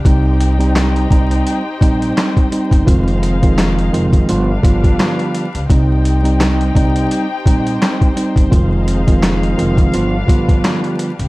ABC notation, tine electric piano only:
X:1
M:4/4
L:1/16
Q:"Swing 16ths" 1/4=85
K:Cm
V:1 name="Tine electric piano"
[G,CE]3 [G,CE]3 [G,CE]3 z [G,CE]4 [G,CE]2 | [E,F,A,CF]3 [E,F,A,CF]3 [E,F,A,CF]2 [D,F,G,=B,F] z [D,F,G,B,F]4- [D,F,G,B,F] z | [G,CE]3 [G,CE]3 [G,CE]3 z [G,CE]4 [G,CE]2 | [E,F,A,CF]3 [E,F,A,CF]3 [E,F,A,CF]2 [D,F,G,=B,F] z [D,F,G,B,F]4- [D,F,G,B,F] z |]